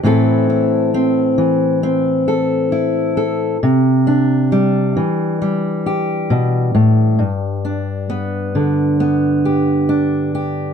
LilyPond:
\new Staff \with { instrumentName = "Steel-string acoustic guitar" } { \time 4/4 \key g \major \tempo 4 = 67 << { <e c' e' a'>8 e'8 c'4 c'8 a'8 e'8 a'8 | r8 d'8 g4 g8 g'4. | r8 d'8 b4 b8 g'8 d'8 g'8 | } \\ { a,4. e2~ e8 | c4. e4. b,8 a,8 | g,4. d2~ d8 | } >> }